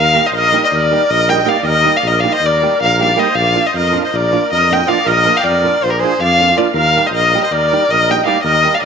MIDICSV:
0, 0, Header, 1, 5, 480
1, 0, Start_track
1, 0, Key_signature, -3, "major"
1, 0, Tempo, 378072
1, 2087, Time_signature, 9, 3, 24, 8
1, 11237, End_track
2, 0, Start_track
2, 0, Title_t, "Violin"
2, 0, Program_c, 0, 40
2, 0, Note_on_c, 0, 77, 117
2, 331, Note_on_c, 0, 75, 76
2, 351, Note_off_c, 0, 77, 0
2, 428, Note_off_c, 0, 75, 0
2, 445, Note_on_c, 0, 75, 115
2, 782, Note_off_c, 0, 75, 0
2, 813, Note_on_c, 0, 75, 94
2, 815, Note_on_c, 0, 74, 68
2, 834, Note_off_c, 0, 75, 0
2, 859, Note_on_c, 0, 75, 84
2, 878, Note_off_c, 0, 74, 0
2, 917, Note_on_c, 0, 74, 113
2, 936, Note_off_c, 0, 75, 0
2, 1404, Note_on_c, 0, 75, 124
2, 1423, Note_off_c, 0, 74, 0
2, 1645, Note_on_c, 0, 79, 100
2, 1664, Note_off_c, 0, 75, 0
2, 1887, Note_on_c, 0, 77, 89
2, 1906, Note_off_c, 0, 79, 0
2, 2097, Note_off_c, 0, 77, 0
2, 2107, Note_on_c, 0, 75, 124
2, 2491, Note_on_c, 0, 77, 102
2, 2510, Note_off_c, 0, 75, 0
2, 2628, Note_on_c, 0, 75, 104
2, 2647, Note_off_c, 0, 77, 0
2, 2796, Note_on_c, 0, 77, 103
2, 2815, Note_off_c, 0, 75, 0
2, 2954, Note_on_c, 0, 75, 127
2, 2973, Note_off_c, 0, 77, 0
2, 3120, Note_on_c, 0, 74, 111
2, 3139, Note_off_c, 0, 75, 0
2, 3576, Note_off_c, 0, 74, 0
2, 3583, Note_on_c, 0, 77, 114
2, 3804, Note_off_c, 0, 77, 0
2, 3842, Note_on_c, 0, 77, 106
2, 4052, Note_on_c, 0, 75, 99
2, 4071, Note_off_c, 0, 77, 0
2, 4254, Note_on_c, 0, 77, 109
2, 4273, Note_off_c, 0, 75, 0
2, 4653, Note_on_c, 0, 75, 92
2, 4672, Note_off_c, 0, 77, 0
2, 4754, Note_off_c, 0, 75, 0
2, 4777, Note_on_c, 0, 75, 105
2, 5112, Note_off_c, 0, 75, 0
2, 5134, Note_on_c, 0, 75, 90
2, 5276, Note_on_c, 0, 74, 115
2, 5295, Note_off_c, 0, 75, 0
2, 5741, Note_off_c, 0, 74, 0
2, 5748, Note_on_c, 0, 75, 110
2, 5999, Note_on_c, 0, 79, 102
2, 6018, Note_off_c, 0, 75, 0
2, 6196, Note_on_c, 0, 77, 105
2, 6215, Note_off_c, 0, 79, 0
2, 6438, Note_on_c, 0, 75, 127
2, 6457, Note_off_c, 0, 77, 0
2, 6813, Note_on_c, 0, 77, 78
2, 6818, Note_on_c, 0, 79, 85
2, 6832, Note_off_c, 0, 75, 0
2, 6837, Note_off_c, 0, 77, 0
2, 6842, Note_on_c, 0, 77, 88
2, 6861, Note_off_c, 0, 79, 0
2, 6905, Note_on_c, 0, 74, 109
2, 6924, Note_off_c, 0, 77, 0
2, 7407, Note_on_c, 0, 72, 89
2, 7427, Note_off_c, 0, 74, 0
2, 7492, Note_on_c, 0, 70, 84
2, 7511, Note_off_c, 0, 72, 0
2, 7607, Note_on_c, 0, 72, 110
2, 7626, Note_off_c, 0, 70, 0
2, 7894, Note_off_c, 0, 72, 0
2, 7903, Note_on_c, 0, 77, 121
2, 8347, Note_on_c, 0, 74, 93
2, 8366, Note_off_c, 0, 77, 0
2, 8564, Note_off_c, 0, 74, 0
2, 8587, Note_on_c, 0, 77, 113
2, 8970, Note_on_c, 0, 75, 73
2, 8989, Note_off_c, 0, 77, 0
2, 9059, Note_off_c, 0, 75, 0
2, 9067, Note_on_c, 0, 75, 114
2, 9411, Note_off_c, 0, 75, 0
2, 9440, Note_on_c, 0, 75, 82
2, 9541, Note_on_c, 0, 74, 111
2, 9560, Note_off_c, 0, 75, 0
2, 10037, Note_on_c, 0, 75, 124
2, 10056, Note_off_c, 0, 74, 0
2, 10296, Note_on_c, 0, 79, 102
2, 10315, Note_off_c, 0, 75, 0
2, 10482, Note_off_c, 0, 79, 0
2, 10489, Note_on_c, 0, 77, 91
2, 10696, Note_off_c, 0, 77, 0
2, 10708, Note_on_c, 0, 75, 114
2, 11102, Note_on_c, 0, 77, 90
2, 11121, Note_off_c, 0, 75, 0
2, 11200, Note_off_c, 0, 77, 0
2, 11237, End_track
3, 0, Start_track
3, 0, Title_t, "Accordion"
3, 0, Program_c, 1, 21
3, 0, Note_on_c, 1, 70, 93
3, 293, Note_off_c, 1, 70, 0
3, 336, Note_on_c, 1, 72, 78
3, 430, Note_off_c, 1, 72, 0
3, 457, Note_on_c, 1, 70, 93
3, 789, Note_off_c, 1, 70, 0
3, 832, Note_on_c, 1, 72, 72
3, 851, Note_on_c, 1, 70, 65
3, 856, Note_off_c, 1, 72, 0
3, 877, Note_off_c, 1, 70, 0
3, 878, Note_on_c, 1, 72, 76
3, 919, Note_off_c, 1, 72, 0
3, 935, Note_on_c, 1, 70, 82
3, 1401, Note_off_c, 1, 70, 0
3, 1420, Note_on_c, 1, 70, 92
3, 1657, Note_off_c, 1, 70, 0
3, 1665, Note_on_c, 1, 75, 105
3, 1876, Note_off_c, 1, 75, 0
3, 1886, Note_on_c, 1, 74, 92
3, 2096, Note_off_c, 1, 74, 0
3, 2103, Note_on_c, 1, 70, 89
3, 2448, Note_off_c, 1, 70, 0
3, 2486, Note_on_c, 1, 74, 69
3, 2589, Note_off_c, 1, 74, 0
3, 2624, Note_on_c, 1, 70, 91
3, 2761, Note_on_c, 1, 74, 80
3, 2779, Note_off_c, 1, 70, 0
3, 2923, Note_off_c, 1, 74, 0
3, 2948, Note_on_c, 1, 72, 79
3, 3085, Note_off_c, 1, 72, 0
3, 3095, Note_on_c, 1, 70, 73
3, 3575, Note_off_c, 1, 70, 0
3, 3594, Note_on_c, 1, 70, 98
3, 3810, Note_off_c, 1, 70, 0
3, 3855, Note_on_c, 1, 74, 97
3, 4039, Note_off_c, 1, 74, 0
3, 4074, Note_on_c, 1, 72, 93
3, 4272, Note_off_c, 1, 72, 0
3, 4275, Note_on_c, 1, 74, 94
3, 4641, Note_off_c, 1, 74, 0
3, 4665, Note_on_c, 1, 72, 70
3, 4758, Note_on_c, 1, 70, 82
3, 4760, Note_off_c, 1, 72, 0
3, 5102, Note_off_c, 1, 70, 0
3, 5135, Note_on_c, 1, 72, 80
3, 5233, Note_off_c, 1, 72, 0
3, 5249, Note_on_c, 1, 70, 75
3, 5731, Note_off_c, 1, 70, 0
3, 5751, Note_on_c, 1, 70, 101
3, 5967, Note_off_c, 1, 70, 0
3, 6008, Note_on_c, 1, 75, 101
3, 6203, Note_on_c, 1, 74, 98
3, 6208, Note_off_c, 1, 75, 0
3, 6412, Note_on_c, 1, 70, 107
3, 6415, Note_off_c, 1, 74, 0
3, 6788, Note_off_c, 1, 70, 0
3, 6791, Note_on_c, 1, 74, 66
3, 6812, Note_on_c, 1, 75, 55
3, 6817, Note_off_c, 1, 74, 0
3, 6841, Note_off_c, 1, 75, 0
3, 6855, Note_on_c, 1, 74, 58
3, 6897, Note_on_c, 1, 70, 93
3, 6905, Note_off_c, 1, 74, 0
3, 7388, Note_off_c, 1, 70, 0
3, 7394, Note_on_c, 1, 65, 78
3, 7466, Note_on_c, 1, 67, 74
3, 7485, Note_off_c, 1, 65, 0
3, 7568, Note_off_c, 1, 67, 0
3, 7585, Note_on_c, 1, 68, 97
3, 7878, Note_on_c, 1, 74, 83
3, 7883, Note_off_c, 1, 68, 0
3, 8312, Note_off_c, 1, 74, 0
3, 8344, Note_on_c, 1, 70, 73
3, 8536, Note_off_c, 1, 70, 0
3, 8555, Note_on_c, 1, 70, 96
3, 8909, Note_off_c, 1, 70, 0
3, 8941, Note_on_c, 1, 72, 69
3, 9053, Note_off_c, 1, 72, 0
3, 9056, Note_on_c, 1, 70, 75
3, 9405, Note_off_c, 1, 70, 0
3, 9437, Note_on_c, 1, 72, 83
3, 9538, Note_off_c, 1, 72, 0
3, 9538, Note_on_c, 1, 70, 80
3, 10027, Note_off_c, 1, 70, 0
3, 10046, Note_on_c, 1, 70, 89
3, 10279, Note_on_c, 1, 75, 99
3, 10286, Note_off_c, 1, 70, 0
3, 10485, Note_on_c, 1, 74, 82
3, 10498, Note_off_c, 1, 75, 0
3, 10694, Note_off_c, 1, 74, 0
3, 10717, Note_on_c, 1, 70, 91
3, 11067, Note_off_c, 1, 70, 0
3, 11097, Note_on_c, 1, 74, 79
3, 11208, Note_off_c, 1, 74, 0
3, 11237, End_track
4, 0, Start_track
4, 0, Title_t, "Nylon-string guitar"
4, 0, Program_c, 2, 24
4, 168, Note_on_c, 2, 55, 59
4, 189, Note_on_c, 2, 58, 67
4, 195, Note_on_c, 2, 63, 57
4, 204, Note_on_c, 2, 67, 75
4, 304, Note_off_c, 2, 55, 0
4, 314, Note_off_c, 2, 58, 0
4, 318, Note_off_c, 2, 63, 0
4, 319, Note_off_c, 2, 67, 0
4, 657, Note_on_c, 2, 55, 55
4, 666, Note_on_c, 2, 58, 58
4, 672, Note_on_c, 2, 63, 65
4, 685, Note_on_c, 2, 67, 60
4, 795, Note_off_c, 2, 55, 0
4, 800, Note_off_c, 2, 58, 0
4, 801, Note_off_c, 2, 63, 0
4, 809, Note_off_c, 2, 67, 0
4, 1154, Note_on_c, 2, 55, 66
4, 1162, Note_on_c, 2, 58, 64
4, 1170, Note_on_c, 2, 63, 66
4, 1178, Note_on_c, 2, 67, 82
4, 1291, Note_off_c, 2, 55, 0
4, 1293, Note_off_c, 2, 58, 0
4, 1298, Note_off_c, 2, 63, 0
4, 1302, Note_off_c, 2, 67, 0
4, 1630, Note_on_c, 2, 55, 68
4, 1638, Note_on_c, 2, 58, 57
4, 1647, Note_on_c, 2, 63, 53
4, 1653, Note_on_c, 2, 67, 71
4, 1762, Note_off_c, 2, 55, 0
4, 1766, Note_off_c, 2, 58, 0
4, 1771, Note_off_c, 2, 63, 0
4, 1774, Note_off_c, 2, 67, 0
4, 1831, Note_on_c, 2, 55, 81
4, 1843, Note_on_c, 2, 58, 74
4, 1851, Note_on_c, 2, 63, 72
4, 1856, Note_on_c, 2, 67, 102
4, 1973, Note_off_c, 2, 55, 0
4, 1979, Note_off_c, 2, 58, 0
4, 1983, Note_off_c, 2, 63, 0
4, 1983, Note_off_c, 2, 67, 0
4, 2333, Note_on_c, 2, 55, 69
4, 2346, Note_on_c, 2, 58, 67
4, 2353, Note_on_c, 2, 63, 60
4, 2363, Note_on_c, 2, 67, 72
4, 2470, Note_off_c, 2, 55, 0
4, 2477, Note_off_c, 2, 58, 0
4, 2480, Note_off_c, 2, 63, 0
4, 2485, Note_off_c, 2, 67, 0
4, 2834, Note_on_c, 2, 55, 66
4, 2844, Note_on_c, 2, 58, 62
4, 2845, Note_on_c, 2, 63, 59
4, 2855, Note_on_c, 2, 67, 69
4, 2967, Note_off_c, 2, 55, 0
4, 2972, Note_off_c, 2, 58, 0
4, 2972, Note_off_c, 2, 63, 0
4, 2977, Note_off_c, 2, 67, 0
4, 3319, Note_on_c, 2, 55, 68
4, 3326, Note_on_c, 2, 58, 56
4, 3339, Note_on_c, 2, 63, 61
4, 3343, Note_on_c, 2, 67, 70
4, 3456, Note_off_c, 2, 55, 0
4, 3459, Note_off_c, 2, 58, 0
4, 3465, Note_off_c, 2, 67, 0
4, 3466, Note_off_c, 2, 63, 0
4, 3794, Note_on_c, 2, 55, 73
4, 3800, Note_on_c, 2, 58, 62
4, 3804, Note_on_c, 2, 63, 59
4, 3820, Note_on_c, 2, 67, 72
4, 3927, Note_off_c, 2, 55, 0
4, 3929, Note_off_c, 2, 58, 0
4, 3929, Note_off_c, 2, 63, 0
4, 3939, Note_off_c, 2, 67, 0
4, 4013, Note_on_c, 2, 55, 87
4, 4019, Note_on_c, 2, 58, 75
4, 4026, Note_on_c, 2, 63, 73
4, 4030, Note_on_c, 2, 67, 105
4, 4146, Note_off_c, 2, 55, 0
4, 4150, Note_off_c, 2, 58, 0
4, 4150, Note_off_c, 2, 63, 0
4, 4154, Note_off_c, 2, 67, 0
4, 4488, Note_on_c, 2, 53, 73
4, 4503, Note_on_c, 2, 58, 53
4, 4508, Note_on_c, 2, 62, 52
4, 4522, Note_on_c, 2, 65, 66
4, 4629, Note_off_c, 2, 53, 0
4, 4637, Note_off_c, 2, 58, 0
4, 4638, Note_off_c, 2, 62, 0
4, 4646, Note_off_c, 2, 65, 0
4, 4969, Note_on_c, 2, 53, 69
4, 4975, Note_on_c, 2, 58, 64
4, 4983, Note_on_c, 2, 62, 55
4, 4995, Note_on_c, 2, 65, 77
4, 5115, Note_off_c, 2, 53, 0
4, 5118, Note_off_c, 2, 58, 0
4, 5122, Note_off_c, 2, 62, 0
4, 5128, Note_off_c, 2, 65, 0
4, 5471, Note_on_c, 2, 53, 65
4, 5478, Note_on_c, 2, 58, 64
4, 5484, Note_on_c, 2, 62, 64
4, 5494, Note_on_c, 2, 65, 72
4, 5611, Note_off_c, 2, 53, 0
4, 5615, Note_off_c, 2, 58, 0
4, 5618, Note_off_c, 2, 62, 0
4, 5623, Note_off_c, 2, 65, 0
4, 5953, Note_on_c, 2, 53, 62
4, 5966, Note_on_c, 2, 58, 56
4, 5976, Note_on_c, 2, 62, 64
4, 5979, Note_on_c, 2, 65, 74
4, 6085, Note_off_c, 2, 53, 0
4, 6092, Note_off_c, 2, 58, 0
4, 6097, Note_off_c, 2, 62, 0
4, 6097, Note_off_c, 2, 65, 0
4, 6182, Note_on_c, 2, 53, 86
4, 6189, Note_on_c, 2, 58, 74
4, 6197, Note_on_c, 2, 62, 87
4, 6204, Note_on_c, 2, 65, 93
4, 6309, Note_off_c, 2, 53, 0
4, 6313, Note_off_c, 2, 58, 0
4, 6317, Note_off_c, 2, 62, 0
4, 6319, Note_off_c, 2, 65, 0
4, 6661, Note_on_c, 2, 53, 62
4, 6670, Note_on_c, 2, 58, 64
4, 6676, Note_on_c, 2, 62, 59
4, 6687, Note_on_c, 2, 65, 59
4, 6794, Note_off_c, 2, 53, 0
4, 6799, Note_off_c, 2, 58, 0
4, 6801, Note_off_c, 2, 62, 0
4, 6807, Note_off_c, 2, 65, 0
4, 7153, Note_on_c, 2, 53, 61
4, 7157, Note_on_c, 2, 58, 65
4, 7165, Note_on_c, 2, 62, 58
4, 7176, Note_on_c, 2, 65, 67
4, 7286, Note_off_c, 2, 53, 0
4, 7286, Note_off_c, 2, 58, 0
4, 7291, Note_off_c, 2, 62, 0
4, 7297, Note_off_c, 2, 65, 0
4, 7638, Note_on_c, 2, 53, 58
4, 7646, Note_on_c, 2, 58, 52
4, 7660, Note_on_c, 2, 62, 60
4, 7667, Note_on_c, 2, 65, 76
4, 7773, Note_off_c, 2, 53, 0
4, 7774, Note_off_c, 2, 58, 0
4, 7784, Note_off_c, 2, 62, 0
4, 7787, Note_off_c, 2, 65, 0
4, 8106, Note_on_c, 2, 53, 60
4, 8113, Note_on_c, 2, 58, 57
4, 8118, Note_on_c, 2, 62, 53
4, 8132, Note_on_c, 2, 65, 61
4, 8239, Note_off_c, 2, 53, 0
4, 8243, Note_off_c, 2, 58, 0
4, 8245, Note_off_c, 2, 62, 0
4, 8252, Note_off_c, 2, 65, 0
4, 8331, Note_on_c, 2, 53, 83
4, 8338, Note_on_c, 2, 58, 75
4, 8349, Note_on_c, 2, 62, 65
4, 8357, Note_on_c, 2, 65, 94
4, 8461, Note_off_c, 2, 53, 0
4, 8463, Note_off_c, 2, 58, 0
4, 8470, Note_off_c, 2, 62, 0
4, 8474, Note_off_c, 2, 65, 0
4, 8829, Note_on_c, 2, 55, 59
4, 8835, Note_on_c, 2, 58, 49
4, 8842, Note_on_c, 2, 63, 48
4, 8854, Note_on_c, 2, 67, 61
4, 8956, Note_off_c, 2, 55, 0
4, 8956, Note_off_c, 2, 58, 0
4, 8962, Note_off_c, 2, 63, 0
4, 8968, Note_off_c, 2, 67, 0
4, 9314, Note_on_c, 2, 55, 54
4, 9324, Note_on_c, 2, 58, 52
4, 9328, Note_on_c, 2, 63, 62
4, 9335, Note_on_c, 2, 67, 80
4, 9443, Note_off_c, 2, 55, 0
4, 9447, Note_off_c, 2, 58, 0
4, 9448, Note_off_c, 2, 63, 0
4, 9453, Note_off_c, 2, 67, 0
4, 9793, Note_on_c, 2, 55, 68
4, 9803, Note_on_c, 2, 58, 56
4, 9811, Note_on_c, 2, 63, 66
4, 9820, Note_on_c, 2, 67, 63
4, 9927, Note_off_c, 2, 55, 0
4, 9932, Note_off_c, 2, 58, 0
4, 9936, Note_off_c, 2, 63, 0
4, 9940, Note_off_c, 2, 67, 0
4, 10267, Note_on_c, 2, 55, 62
4, 10275, Note_on_c, 2, 58, 57
4, 10283, Note_on_c, 2, 63, 56
4, 10292, Note_on_c, 2, 67, 65
4, 10396, Note_off_c, 2, 55, 0
4, 10400, Note_off_c, 2, 58, 0
4, 10404, Note_off_c, 2, 63, 0
4, 10409, Note_off_c, 2, 67, 0
4, 10479, Note_on_c, 2, 55, 88
4, 10484, Note_on_c, 2, 58, 70
4, 10497, Note_on_c, 2, 63, 74
4, 10503, Note_on_c, 2, 67, 102
4, 10611, Note_off_c, 2, 55, 0
4, 10614, Note_off_c, 2, 58, 0
4, 10621, Note_off_c, 2, 63, 0
4, 10624, Note_off_c, 2, 67, 0
4, 10964, Note_on_c, 2, 55, 55
4, 10970, Note_on_c, 2, 58, 48
4, 10978, Note_on_c, 2, 63, 62
4, 10983, Note_on_c, 2, 67, 82
4, 11100, Note_off_c, 2, 55, 0
4, 11101, Note_off_c, 2, 58, 0
4, 11107, Note_off_c, 2, 63, 0
4, 11108, Note_off_c, 2, 67, 0
4, 11237, End_track
5, 0, Start_track
5, 0, Title_t, "Tuba"
5, 0, Program_c, 3, 58
5, 0, Note_on_c, 3, 39, 117
5, 222, Note_off_c, 3, 39, 0
5, 407, Note_on_c, 3, 34, 77
5, 704, Note_off_c, 3, 34, 0
5, 909, Note_on_c, 3, 39, 94
5, 1204, Note_off_c, 3, 39, 0
5, 1398, Note_on_c, 3, 34, 96
5, 1811, Note_off_c, 3, 34, 0
5, 2069, Note_on_c, 3, 39, 114
5, 2370, Note_off_c, 3, 39, 0
5, 2574, Note_on_c, 3, 34, 106
5, 2871, Note_off_c, 3, 34, 0
5, 3060, Note_on_c, 3, 39, 88
5, 3358, Note_off_c, 3, 39, 0
5, 3574, Note_on_c, 3, 34, 110
5, 3983, Note_off_c, 3, 34, 0
5, 4247, Note_on_c, 3, 34, 114
5, 4543, Note_off_c, 3, 34, 0
5, 4748, Note_on_c, 3, 41, 93
5, 5040, Note_off_c, 3, 41, 0
5, 5245, Note_on_c, 3, 34, 103
5, 5536, Note_off_c, 3, 34, 0
5, 5737, Note_on_c, 3, 41, 91
5, 6144, Note_off_c, 3, 41, 0
5, 6424, Note_on_c, 3, 34, 111
5, 6713, Note_off_c, 3, 34, 0
5, 6899, Note_on_c, 3, 41, 90
5, 7193, Note_off_c, 3, 41, 0
5, 7389, Note_on_c, 3, 34, 78
5, 7683, Note_off_c, 3, 34, 0
5, 7875, Note_on_c, 3, 41, 107
5, 8287, Note_off_c, 3, 41, 0
5, 8548, Note_on_c, 3, 39, 109
5, 8846, Note_off_c, 3, 39, 0
5, 9035, Note_on_c, 3, 34, 99
5, 9334, Note_off_c, 3, 34, 0
5, 9536, Note_on_c, 3, 39, 84
5, 9831, Note_off_c, 3, 39, 0
5, 10023, Note_on_c, 3, 34, 94
5, 10436, Note_off_c, 3, 34, 0
5, 10707, Note_on_c, 3, 39, 103
5, 11003, Note_off_c, 3, 39, 0
5, 11237, End_track
0, 0, End_of_file